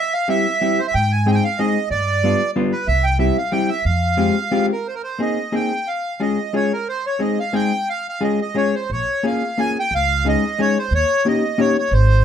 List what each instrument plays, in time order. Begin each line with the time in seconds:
Already playing: accordion E5
0.13 accordion F5
0.28 hollow-body jazz guitar G3 C4 E4 G4, accordion E5
0.61 hollow-body jazz guitar G3 C4 E4 G4
0.79 accordion C5
0.87 accordion E5
0.94 upright bass G#2, accordion G5
1.12 accordion G#5
1.26 hollow-body jazz guitar G#3 C4 D#4 G#4, accordion G5
1.31 accordion G5 G#5
1.44 accordion F5
1.59 hollow-body jazz guitar G#3 C4 D#4 G#4, accordion D#5
1.91 upright bass G2, accordion D5
2.24 hollow-body jazz guitar G3 B3 D4 F4
2.56 hollow-body jazz guitar G3 B3 D4 F4
2.72 accordion B4
2.87 upright bass C2, accordion E5
3.04 accordion G5
3.19 hollow-body jazz guitar G3 C4 E4 G4, accordion E5
3.37 accordion F5
3.52 hollow-body jazz guitar G3 C4 E4 G4, accordion G5
3.69 accordion E5
3.85 upright bass F2, accordion F5
4.17 hollow-body jazz guitar G#3 C4 F4 G4
4.51 hollow-body jazz guitar G#3 C4 F4 G4
4.72 accordion A#4
4.87 accordion C5
4.95 accordion A#4
5.03 accordion C5
5.19 hollow-body jazz guitar A#3 C4 D#4 G#4, accordion D#5
5.52 hollow-body jazz guitar A#3 C4 D#4 G#4, accordion G5
5.87 accordion F5
6.20 hollow-body jazz guitar G#3 C#4 F4 G#4, accordion D#5
6.53 hollow-body jazz guitar G#3 C#4 F4 G#4, accordion C#5
6.73 accordion A#4
6.88 accordion C5
7.07 accordion C#5
7.19 hollow-body jazz guitar G#3 C4 D#4 G#4, accordion D#5
7.39 accordion F5
7.53 hollow-body jazz guitar G#3 C4 D#4 G#4, accordion G5
7.89 accordion F5
8.09 accordion F5
8.21 hollow-body jazz guitar G#3 C#4 F4 G#4, accordion D#5
8.41 accordion D#5
8.54 hollow-body jazz guitar G#3 C#4 F4 G#4, accordion C#5
8.75 accordion C5
8.90 upright bass A#1, accordion C#5
9.23 hollow-body jazz guitar A#3 C#4 F4 G#4, accordion F5
9.58 hollow-body jazz guitar A#3 C#4 F4 G#4, accordion G#5
9.79 accordion G5
9.91 upright bass C#2, accordion F5
10.25 hollow-body jazz guitar G#3 C#4 D#4 G#4, accordion D#5
10.59 hollow-body jazz guitar G#3 C#4 D#4 G#4, accordion C#5
10.79 accordion C5
10.91 upright bass D#2, accordion C#5
11.25 hollow-body jazz guitar A#3 C#4 D#4 G4, accordion D#5
11.58 hollow-body jazz guitar A#3 C#4 D#4 G4, accordion C#5
11.78 accordion C#5
11.91 upright bass G#1, accordion C5